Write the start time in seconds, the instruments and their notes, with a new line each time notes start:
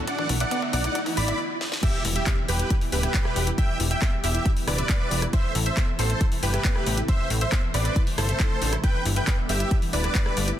Already playing: analog synth pad D3 F#3 F#4, riser
0.07 analog synth pad A3 B3, synth pluck E4, supersaw synth D5 F#5, kick, closed hi-hat
0.19 synth pluck E3, kick
0.29 analog synth bass B1, synth pluck E4, kick, open hi-hat
0.40 supersaw synth D5 F#5, synth pluck E5, kick, closed hi-hat
0.51 synth pluck B3, kick, closed hi-hat
0.62 synth pluck E5, kick
0.73 analog synth bass B1, synth pluck B3, supersaw synth D5 F#5, kick, open hi-hat
0.84 synth pluck E4, kick, closed hi-hat
0.95 synth pluck E4, kick, closed hi-hat
1.06 synth pluck E3, kick, open hi-hat
1.17 analog synth bass A1, synth pluck E4, supersaw synth D5 B5, kick, open hi-hat
1.28 synth pluck E5, kick, closed hi-hat
1.61 snare
1.72 snare
1.83 analog synth pad B2 E3 G3 E4 G4, synth pluck E4, supersaw synth G4 E5, kick, closed hi-hat, crash, impact
1.94 synth pluck E3
2.05 analog synth bass E1, synth pluck E4, open hi-hat
2.16 supersaw synth G4 E5, synth pluck E5, closed hi-hat
2.27 synth pluck B3, kick, cross-stick, clap, closed hi-hat
2.38 synth pluck E5
2.48 analog synth bass E1, synth pluck B3, supersaw synth G4 B4, open hi-hat
2.59 synth pluck E4, closed hi-hat
2.70 synth pluck E4, kick, closed hi-hat
2.81 synth pluck E3, open hi-hat
2.92 analog synth bass D1, synth pluck E4, supersaw synth G4 B4, open hi-hat
3.03 synth pluck E5, cross-stick, closed hi-hat
3.14 synth pluck B3, kick, clap, closed hi-hat
3.25 synth pluck E5, cross-stick
3.36 analog synth bass E1, synth pluck B3, open hi-hat
3.47 synth pluck E4, closed hi-hat
3.58 synth pluck E4, supersaw synth E5 G5, kick, closed hi-hat
3.69 synth pluck E3
3.80 analog synth bass E1, synth pluck E4, open hi-hat
3.91 synth pluck E5, supersaw synth E5 G5, closed hi-hat
4.02 synth pluck B3, kick, cross-stick, clap, closed hi-hat
4.13 synth pluck E5
4.24 analog synth bass E1, synth pluck B3, supersaw synth G4 E5, open hi-hat
4.35 synth pluck E4, closed hi-hat
4.46 synth pluck E4, kick, closed hi-hat
4.57 synth pluck E3, open hi-hat
4.67 analog synth bass D1, synth pluck E4, supersaw synth B4 D5, cross-stick, open hi-hat
4.78 synth pluck E5, closed hi-hat
4.89 synth pluck B3, kick, clap, closed hi-hat
5.00 synth pluck E5
5.11 analog synth bass E1, synth pluck B3, open hi-hat
5.22 synth pluck E4, cross-stick, closed hi-hat
5.33 analog synth pad C3 A3 A4, synth pluck E4, supersaw synth C5 E5, kick, closed hi-hat
5.44 synth pluck E3
5.55 analog synth bass A1, synth pluck E4, open hi-hat
5.66 supersaw synth C5 E5, synth pluck E5, closed hi-hat
5.77 synth pluck B3, kick, cross-stick, clap, closed hi-hat
5.88 synth pluck E5
5.99 analog synth bass A1, synth pluck B3, supersaw synth A4 C5, open hi-hat
6.10 synth pluck E4, closed hi-hat
6.21 synth pluck E4, kick, closed hi-hat
6.32 synth pluck E3, open hi-hat
6.43 analog synth bass G1, synth pluck E4, supersaw synth G4 B4, open hi-hat
6.54 synth pluck E5, cross-stick, closed hi-hat
6.65 synth pluck B3, kick, clap, closed hi-hat
6.76 synth pluck E5, cross-stick
6.87 analog synth bass A1, synth pluck B3, open hi-hat
6.97 synth pluck E4, closed hi-hat
7.08 synth pluck E4, analog synth pad C5, supersaw synth C5 E5, kick, closed hi-hat
7.19 synth pluck E3
7.30 analog synth bass A1, synth pluck E4, open hi-hat
7.41 supersaw synth C5 E5, synth pluck E5, closed hi-hat
7.52 synth pluck B3, kick, cross-stick, clap, closed hi-hat
7.63 synth pluck E5
7.74 analog synth bass A1, synth pluck B3, supersaw synth B4 D5, open hi-hat
7.85 synth pluck E4, closed hi-hat
7.96 synth pluck E4, kick, closed hi-hat
8.07 synth pluck E3, open hi-hat
8.18 analog synth bass G1, synth pluck E4, supersaw synth A4 C5, cross-stick, open hi-hat
8.29 synth pluck E5, closed hi-hat
8.40 synth pluck E4, kick, clap, closed hi-hat
8.51 synth pluck A4
8.62 analog synth bass A1, synth pluck D4, open hi-hat
8.73 synth pluck E4, cross-stick, closed hi-hat
8.84 analog synth pad D3 G3 B3 G4, synth pluck E4, supersaw synth B4 G5, kick, closed hi-hat
8.95 synth pluck E3
9.06 analog synth bass G1, synth pluck E4, open hi-hat
9.16 supersaw synth B4 G5, synth pluck E5, closed hi-hat
9.27 synth pluck B3, kick, cross-stick, clap, closed hi-hat
9.38 synth pluck E5
9.49 analog synth bass G1, synth pluck B3, supersaw synth G4 E5, open hi-hat
9.60 synth pluck E4, closed hi-hat
9.71 synth pluck E4, kick, closed hi-hat
9.82 synth pluck E3, open hi-hat
9.93 analog synth bass D1, synth pluck E4, supersaw synth B4 D5, open hi-hat
10.04 synth pluck E5, cross-stick, closed hi-hat
10.15 synth pluck B3, kick, clap, closed hi-hat
10.26 synth pluck E5, cross-stick
10.37 analog synth bass G1, synth pluck B3, open hi-hat
10.48 synth pluck E4, closed hi-hat